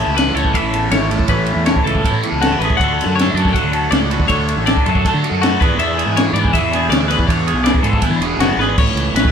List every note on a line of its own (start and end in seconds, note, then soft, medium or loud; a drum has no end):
0.00 0.53 A2 medium
0.00 0.71 A2 medium
0.00 0.54 E3 loud
0.00 0.38 A3 loud
0.00 0.38 C#4 loud
0.00 1.28 C#4 medium
0.00 0.36 E4 loud
0.00 0.34 G#4 medium
0.00 0.35 A4 loud
0.00 0.16 E5 medium
0.07 0.32 C#2 medium
0.14 1.66 E3 medium
0.14 0.53 E4 medium
0.14 0.35 B4 medium
0.14 ride loud
0.19 snare loud
0.35 0.52 C#2 medium
0.35 0.56 C#4 medium
0.35 0.56 E4 medium
0.35 1.86 A4 medium
0.35 0.57 A4 medium
0.35 0.55 C#5 medium
0.35 ride medium
0.39 0.55 A3 medium
0.45 kick medium
0.53 0.91 A2 medium
0.53 0.92 E3 medium
0.53 0.77 A3 medium
0.53 0.76 C#4 loud
0.53 0.91 E4 medium
0.53 0.74 E4 medium
0.53 0.92 E5 medium
0.53 kick medium
0.53 ride loud
0.57 0.73 A4 loud
0.62 0.88 A1 medium
0.73 1.11 E2 medium
0.73 0.93 A3 medium
0.73 0.94 C#4 medium
0.73 0.94 E4 medium
0.73 0.96 A4 medium
0.73 ride medium
0.91 1.16 G#1 loud
0.91 1.14 A3 medium
0.91 1.13 C#4 medium
0.91 1.09 E4 medium
0.91 1.11 C#5 medium
0.91 snare loud
0.91 ride medium
0.96 1.12 E4 medium
0.96 1.11 A4 medium
1.03 snare soft
1.10 2.23 A2 medium
1.10 1.32 E4 medium
1.10 1.29 A4 medium
1.10 1.34 A4 medium
1.10 snare soft
1.10 ride medium
1.14 1.31 A3 medium
1.14 1.33 C#4 medium
1.19 1.28 A1 medium
1.19 kick medium
1.28 1.54 A1 loud
1.28 2.02 A2 loud
1.28 2.04 E3 loud
1.28 1.90 A3 medium
1.28 2.43 C#4 medium
1.28 1.66 B4 medium
1.28 kick loud
1.28 ride medium
1.33 1.89 C#4 loud
1.33 1.87 E4 loud
1.33 1.86 A4 loud
1.46 ride medium
1.56 1.73 E2 medium
1.66 3.36 E3 medium
1.66 2.04 E4 medium
1.66 1.85 C#5 medium
1.66 snare loud
1.66 ride medium
1.76 kick medium
1.84 2.01 C#2 medium
1.84 2.06 E4 medium
1.84 2.04 A4 medium
1.84 2.07 A4 medium
1.84 2.64 A4 medium
1.84 ride medium
1.89 2.05 A3 medium
1.89 2.05 C#4 medium
1.95 kick medium
2.03 2.42 A2 medium
2.03 2.42 E3 loud
2.03 2.26 A3 medium
2.03 2.24 C#4 medium
2.03 2.42 E4 medium
2.03 2.23 E4 medium
2.03 2.22 A4 medium
2.03 kick medium
2.03 ride medium
2.12 2.21 A2 medium
2.22 2.62 E2 medium
2.22 2.42 C#4 medium
2.22 2.42 E4 medium
2.22 2.43 A4 medium
2.22 ride medium
2.26 2.40 A3 medium
2.32 2.57 C#2 medium
2.40 2.63 A3 medium
2.40 2.62 C#4 medium
2.40 2.52 C#4 medium
2.40 2.60 E4 medium
2.40 2.61 F#4 medium
2.40 2.59 A4 medium
2.40 snare loud
2.40 ride medium
2.52 2.61 E4 medium
2.59 2.68 A1 medium
2.59 2.80 C#4 medium
2.59 2.78 E4 medium
2.59 2.81 A4 medium
2.59 2.79 B4 medium
2.59 snare soft
2.59 ride medium
2.63 2.81 A2 medium
2.63 2.79 A3 medium
2.63 2.79 G#4 medium
2.70 kick medium
2.77 3.04 D2 medium
2.77 3.52 D3 medium
2.77 3.53 A3 loud
2.77 3.38 D4 loud
2.77 3.15 F#5 medium
2.77 kick medium
2.77 ride medium
2.81 4.27 D3 medium
2.81 3.36 F#4 loud
2.81 3.34 A4 loud
2.81 3.21 A4 medium
3.01 snare soft
3.01 ride medium
3.06 3.31 F#2 medium
3.16 3.35 C#5 medium
3.16 ride medium
3.21 3.57 A4 medium
3.21 snare loud
3.34 3.51 F#2 medium
3.34 3.55 F#4 medium
3.34 3.56 A4 medium
3.34 3.53 D5 medium
3.34 ride medium
3.38 4.29 F#3 medium
3.38 3.54 D4 medium
3.38 3.73 F#4 medium
3.45 kick medium
3.45 snare soft
3.53 3.91 D3 medium
3.53 3.90 A3 medium
3.53 3.75 D4 medium
3.53 3.72 F#4 loud
3.53 3.90 F#5 medium
3.53 kick medium
3.53 ride loud
3.57 3.70 A4 medium
3.57 3.91 A4 medium
3.63 3.88 D2 medium
3.72 3.92 D4 medium
3.72 3.92 F#4 medium
3.72 4.11 F#4 medium
3.72 3.93 A4 medium
3.72 ride medium
3.91 4.16 C#2 loud
3.91 4.27 A2 medium
3.91 4.29 A3 medium
3.91 4.14 D4 medium
3.91 4.11 F#4 medium
3.91 4.27 A4 medium
3.91 4.09 A4 medium
3.91 4.10 D5 medium
3.91 snare loud
3.91 ride medium
4.10 4.31 D4 medium
4.10 4.28 F#4 medium
4.10 4.31 F#4 medium
4.10 4.32 A4 medium
4.10 4.28 B4 medium
4.10 ride medium
4.20 4.28 D2 medium
4.20 kick medium
4.28 4.54 D2 loud
4.28 5.58 D3 medium
4.28 5.03 D3 medium
4.28 5.04 A3 loud
4.28 4.89 D4 loud
4.28 4.66 A4 medium
4.28 4.66 C#5 medium
4.28 kick medium
4.28 ride medium
4.32 4.87 F#4 loud
4.32 4.85 A4 loud
4.49 ride medium
4.57 4.73 A1 medium
4.66 5.05 A4 medium
4.66 4.85 D5 medium
4.66 snare loud
4.66 ride medium
4.77 kick medium
4.86 5.02 F#2 medium
4.86 5.60 F#3 medium
4.86 5.06 D4 medium
4.86 5.06 F#4 medium
4.86 5.23 F#4 medium
4.86 5.04 A4 medium
4.86 5.07 A4 medium
4.86 ride medium
4.95 kick medium
5.04 5.42 D3 medium
5.04 5.40 A3 medium
5.04 5.26 D4 medium
5.04 5.24 F#4 medium
5.04 5.21 A4 loud
5.04 kick medium
5.04 ride medium
5.09 5.42 A4 medium
5.14 5.22 D3 medium
5.23 5.59 F#4 medium
5.23 5.42 F#4 medium
5.23 5.44 A4 medium
5.23 ride medium
5.27 5.43 D4 medium
5.31 5.56 F#2 medium
5.42 5.59 A2 medium
5.42 5.59 A3 medium
5.42 5.62 D4 medium
5.42 5.60 F#4 medium
5.42 5.59 A4 medium
5.42 5.61 A4 loud
5.42 snare loud
5.42 ride loud
5.60 7.08 E2 medium
5.60 5.69 E2 medium
5.60 6.14 E3 medium
5.60 5.81 B3 medium
5.60 5.79 D4 medium
5.60 5.82 D4 medium
5.60 6.15 E4 medium
5.60 5.83 G#4 medium
5.60 5.98 G#4 medium
5.60 5.79 B4 medium
5.60 kick loud
5.60 snare soft
5.60 ride medium
5.65 5.80 E3 medium
5.78 6.03 E2 medium
5.78 6.53 E3 loud
5.78 7.08 D4 medium
5.78 6.16 E5 medium
5.78 ride medium
5.82 6.38 B3 loud
5.82 6.37 D4 loud
5.82 6.35 G#4 loud
5.98 6.75 G#4 medium
5.98 ride medium
6.05 6.31 G#2 medium
6.14 7.65 E3 medium
6.14 6.54 E4 medium
6.14 6.33 C#5 medium
6.14 snare loud
6.14 ride loud
6.33 6.50 G#2 medium
6.33 6.56 G#4 medium
6.33 6.53 D5 medium
6.33 ride medium
6.38 6.53 B3 medium
6.38 6.54 D4 medium
6.45 kick medium
6.53 6.89 E3 loud
6.53 6.73 B3 medium
6.53 6.72 D4 medium
6.53 6.93 E4 medium
6.53 6.71 G#4 medium
6.53 6.90 E5 medium
6.53 kick medium
6.53 ride loud
6.61 6.87 E2 medium
6.71 7.09 B2 medium
6.71 6.89 B3 medium
6.71 6.91 D4 medium
6.71 6.93 G#4 medium
6.71 ride medium
6.75 7.10 G#4 medium
6.89 7.15 D2 loud
6.89 7.27 E3 medium
6.89 7.10 B3 medium
6.89 7.09 D4 medium
6.89 7.08 G#4 medium
6.89 7.08 D5 medium
6.89 snare loud
6.89 ride loud
6.93 7.01 C#4 medium
7.01 7.10 E4 medium
7.08 8.59 E2 medium
7.08 7.27 B3 medium
7.08 7.28 D4 medium
7.08 7.29 G#4 medium
7.08 7.46 G#4 medium
7.08 7.27 B4 medium
7.08 ride medium
7.19 7.27 E2 medium
7.19 kick medium
7.27 7.53 E2 loud
7.27 8.02 E3 loud
7.27 7.85 B3 loud
7.27 8.58 D4 medium
7.27 7.83 D4 loud
7.27 7.81 G#4 loud
7.27 7.64 C#5 loud
7.27 kick medium
7.27 ride medium
7.47 7.85 G#4 medium
7.47 ride medium
7.54 7.72 B1 medium
7.64 8.98 E3 medium
7.64 8.02 E4 medium
7.64 7.84 D5 medium
7.64 snare loud
7.64 ride medium
7.75 kick medium
7.82 8.00 G#2 loud
7.82 8.04 D4 medium
7.82 8.04 G#4 medium
7.82 8.03 A4 medium
7.82 ride medium
7.86 8.03 B3 medium
7.93 kick medium
8.02 8.39 E3 medium
8.02 8.24 B3 medium
8.02 8.22 D4 medium
8.02 8.41 E4 medium
8.02 8.20 G#4 loud
8.02 kick medium
8.02 ride loud
8.10 8.19 E3 loud
8.19 8.38 E1 medium
8.19 8.57 B2 medium
8.19 8.42 D4 medium
8.19 8.43 G#4 medium
8.19 8.58 G#4 medium
8.19 ride medium
8.25 8.40 B3 medium
8.38 8.56 F#1 medium
8.38 8.77 E3 medium
8.38 8.62 B3 medium
8.38 8.60 F#4 medium
8.38 snare loud
8.38 ride medium
8.43 8.61 D4 medium
8.43 8.58 E4 medium
8.43 8.59 G#4 medium
8.51 snare soft
8.57 8.75 G#1 medium
8.57 8.79 E2 medium
8.57 8.78 G#4 medium
8.57 8.78 B4 medium
8.57 snare medium
8.62 8.79 B3 medium
8.62 8.79 D4 medium
8.62 8.77 G#4 medium
8.78 8.86 A1 medium
8.78 9.32 A2 medium
8.78 9.15 C#5 medium
8.78 kick loud
8.78 crash loud
8.94 9.12 C#2 medium
8.94 ride medium
8.99 9.32 E3 medium
9.14 9.32 A1 medium
9.14 9.32 B4 medium
9.14 snare loud
9.14 ride loud
9.20 9.28 C#4 medium
9.25 9.32 E4 medium
9.25 kick medium